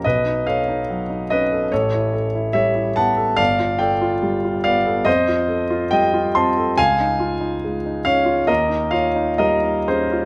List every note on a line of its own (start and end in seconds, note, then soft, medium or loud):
0.04 1.68 B1 soft
0.04 0.44 B4 medium
0.04 0.46 D#5 medium
0.26 0.59 D#4 soft
0.47 0.80 A4 soft
0.47 1.26 C#5 soft
0.47 1.29 F5 medium
0.68 1.01 D#4 soft
0.90 1.22 F#3 soft
1.10 1.42 D#4 soft
1.30 1.64 C#4 soft
1.30 1.69 B4 medium
1.30 1.72 D#5 medium
1.52 1.72 A4 soft
1.72 3.36 A1 soft
1.72 2.12 A4 medium
1.72 2.53 C#5 medium
1.94 2.26 E4 soft
2.14 2.47 A4 soft
2.35 2.68 E4 soft
2.53 2.88 G3 soft
2.53 2.94 C#5 medium
2.53 2.96 E5 medium
2.75 3.09 E4 soft
2.96 3.31 B3 soft
2.96 3.36 F#5 medium
2.96 3.39 A5 medium
3.17 3.39 A4 soft
3.36 5.01 G1 soft
3.36 3.77 D5 medium
3.36 3.80 F5 medium
3.59 3.93 F4 soft
3.79 4.14 A4 soft
3.79 4.59 D5 medium
3.79 4.63 G5 medium
4.02 4.35 F4 soft
4.23 4.56 G3 soft
4.44 4.77 F4 soft
4.64 4.99 B3 soft
4.64 5.04 D5 medium
4.64 5.06 F5 medium
4.86 5.07 A4 soft
5.05 6.73 F2 medium
5.05 5.87 C5 medium
5.05 5.90 D#5 medium
5.28 5.62 F4 soft
5.48 5.82 A4 soft
5.70 6.04 F4 soft
5.91 6.26 G3 soft
5.91 6.32 D#5 medium
5.91 6.34 G5 medium
6.14 6.48 F4 soft
6.35 6.70 C4 soft
6.35 6.75 A5 medium
6.35 6.78 C6 medium
6.57 6.78 A4 soft
6.78 8.45 C#2 soft
6.78 8.02 F5 medium
6.78 8.05 G#5 medium
7.00 7.34 D#4 soft
7.20 7.54 F4 soft
7.41 7.75 D#4 soft
7.64 7.97 G#3 soft
7.86 8.19 D#4 soft
8.05 8.40 C#4 soft
8.05 8.46 C#5 medium
8.05 8.48 F5 medium
8.25 8.48 F4 soft
8.47 10.25 D#2 soft
8.47 8.90 A#4 medium
8.47 8.93 D#5 medium
8.69 9.07 D#4 soft
8.91 9.31 F4 soft
8.91 9.37 C#5 soft
8.91 9.39 F5 medium
9.16 9.54 D#4 soft
9.38 9.79 G3 soft
9.38 9.85 A#4 medium
9.38 9.88 D#5 medium
9.63 10.04 D#4 soft
9.88 10.25 C#4 soft
9.88 10.25 G#4 soft
9.88 10.25 C5 medium
10.13 10.25 F4 soft